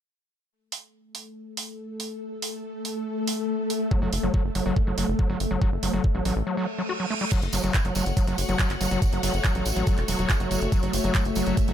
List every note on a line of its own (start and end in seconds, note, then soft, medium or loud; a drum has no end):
0.51 6.47 A3 medium
0.51 6.47 A4 medium
0.72 open hi-hat loud
1.15 open hi-hat medium
1.57 open hi-hat loud
2.00 open hi-hat medium
2.42 open hi-hat loud
2.85 open hi-hat medium
3.27 open hi-hat loud
3.70 open hi-hat loud
3.91 4.01 F#3 medium
3.91 kick loud
4.02 4.09 F#1 medium
4.02 4.11 F#3 loud
4.13 4.19 F#1 loud
4.13 open hi-hat loud
4.23 4.30 F#1 medium
4.23 4.33 F#3 medium
4.34 4.43 F#3 loud
4.34 kick loud
4.45 4.51 F#1 medium
4.55 4.62 F#1 loud
4.55 4.65 F#3 medium
4.55 open hi-hat medium
4.66 4.72 F#1 medium
4.66 4.75 F#3 loud
4.76 kick loud
4.87 4.94 F#1 medium
4.87 4.96 F#3 medium
4.98 5.04 F#1 medium
4.98 5.07 F#3 loud
4.98 open hi-hat loud
5.08 5.15 F#1 medium
5.19 5.28 F#3 medium
5.19 kick loud
5.30 5.36 G1 medium
5.30 5.39 F#3 loud
5.40 5.47 F#1 loud
5.40 open hi-hat loud
5.51 5.58 F#1 medium
5.51 5.60 F#3 medium
5.62 5.71 F#3 loud
5.62 kick loud
5.72 5.79 F#1 medium
5.83 5.89 F#1 loud
5.83 5.92 F#3 medium
5.83 open hi-hat loud
5.93 6.00 F#1 medium
5.93 6.03 F#3 loud
6.04 kick loud
6.15 6.21 A1 medium
6.15 6.24 F#3 medium
6.25 6.32 A1 loud
6.25 6.35 F#3 loud
6.25 open hi-hat medium
6.36 6.43 A1 medium
6.47 6.56 F#3 medium
6.47 reverse cymbal medium
6.57 6.67 F#3 loud
6.79 6.82 F#3 medium
6.89 6.93 F#4 medium
7.00 7.06 F#3 medium
7.10 7.14 A3 medium
7.21 7.25 G3 medium
7.32 7.41 F#3 loud
7.32 11.73 A3 medium
7.32 11.73 F#4 medium
7.32 11.73 A4 medium
7.32 kick loud
7.32 closed hi-hat loud
7.32 crash loud
7.32 tambourine medium
7.42 7.49 F#1 medium
7.42 closed hi-hat medium
7.42 tambourine soft
7.52 7.60 F#1 loud
7.52 7.62 F#3 medium
7.52 open hi-hat loud
7.52 tambourine medium
7.58 11.73 C#5 medium
7.64 7.70 F#1 medium
7.64 7.73 F#3 loud
7.64 closed hi-hat medium
7.64 tambourine soft
7.74 kick loud
7.74 clap loud
7.74 closed hi-hat medium
7.74 tambourine medium
7.83 7.92 F#1 medium
7.83 7.94 F#3 medium
7.83 11.37 F#5 medium
7.83 closed hi-hat medium
7.83 tambourine soft
7.95 8.02 F#1 loud
7.95 8.05 F#3 loud
7.95 open hi-hat medium
7.95 tambourine loud
8.06 8.13 F#1 medium
8.06 closed hi-hat medium
8.06 tambourine soft
8.17 8.26 F#3 medium
8.17 kick loud
8.17 closed hi-hat loud
8.17 tambourine medium
8.27 8.34 F#1 medium
8.27 8.37 F#3 loud
8.27 closed hi-hat medium
8.27 tambourine soft
8.38 8.45 F#1 loud
8.38 open hi-hat loud
8.38 tambourine medium
8.48 8.55 F#1 medium
8.48 8.58 F#3 medium
8.48 closed hi-hat medium
8.48 tambourine soft
8.59 8.69 F#3 loud
8.59 kick loud
8.59 clap loud
8.59 closed hi-hat medium
8.59 tambourine medium
8.70 8.77 G1 medium
8.70 clap soft
8.70 closed hi-hat medium
8.70 tambourine soft
8.81 8.87 F#1 loud
8.81 8.90 F#3 medium
8.81 open hi-hat medium
8.81 tambourine medium
8.91 8.98 F#1 medium
8.91 9.01 F#3 loud
8.91 closed hi-hat medium
8.91 tambourine soft
9.02 kick loud
9.02 closed hi-hat medium
9.02 tambourine medium
9.13 9.19 F#1 medium
9.13 9.22 F#3 medium
9.13 closed hi-hat medium
9.13 tambourine soft
9.23 9.30 F#1 loud
9.23 9.33 F#3 loud
9.23 open hi-hat loud
9.23 tambourine medium
9.34 9.40 F#1 medium
9.34 closed hi-hat medium
9.34 tambourine soft
9.44 9.54 F#3 medium
9.44 kick loud
9.44 clap loud
9.44 closed hi-hat medium
9.44 tambourine medium
9.55 9.62 A1 medium
9.55 9.65 F#3 loud
9.55 closed hi-hat medium
9.55 tambourine soft
9.65 9.72 A1 loud
9.65 open hi-hat medium
9.65 tambourine loud
9.76 9.83 A1 medium
9.76 9.86 F#3 medium
9.76 closed hi-hat medium
9.76 tambourine soft
9.87 9.97 F#3 loud
9.87 kick loud
9.87 closed hi-hat medium
9.87 tambourine soft
9.97 10.04 E1 medium
9.97 clap soft
9.97 closed hi-hat medium
9.97 tambourine soft
10.08 10.15 E1 loud
10.08 10.18 F#3 medium
10.08 open hi-hat loud
10.08 tambourine loud
10.19 10.26 E1 medium
10.19 10.28 F#3 loud
10.19 closed hi-hat medium
10.19 tambourine soft
10.30 kick loud
10.30 clap loud
10.30 closed hi-hat loud
10.30 tambourine medium
10.40 10.47 F#1 medium
10.40 10.50 F#3 medium
10.40 closed hi-hat medium
10.40 tambourine soft
10.51 10.58 F#1 loud
10.51 10.60 F#3 loud
10.51 open hi-hat medium
10.51 tambourine medium
10.61 10.68 F#1 medium
10.61 closed hi-hat medium
10.61 tambourine soft
10.72 10.82 F#3 medium
10.72 kick loud
10.72 closed hi-hat medium
10.72 tambourine medium
10.83 10.89 F#1 medium
10.83 10.92 F#3 loud
10.83 closed hi-hat medium
10.83 tambourine soft
10.93 11.00 F#1 loud
10.93 open hi-hat loud
10.93 tambourine loud
11.04 11.11 F#1 medium
11.04 11.14 F#3 medium
11.04 closed hi-hat medium
11.04 tambourine soft
11.15 kick loud
11.15 clap loud
11.15 closed hi-hat medium
11.15 tambourine medium
11.24 11.32 F#1 medium
11.24 11.73 E5 medium
11.24 closed hi-hat medium
11.24 tambourine soft
11.35 11.43 F#1 loud
11.35 11.45 F#3 medium
11.35 open hi-hat medium
11.35 tambourine medium
11.46 11.53 F#1 medium
11.46 11.56 F#3 loud
11.46 closed hi-hat medium
11.46 tambourine soft
11.57 kick loud
11.57 closed hi-hat medium
11.57 tambourine medium
11.68 11.73 F#1 medium
11.68 11.73 F#3 medium
11.68 closed hi-hat soft
11.68 tambourine soft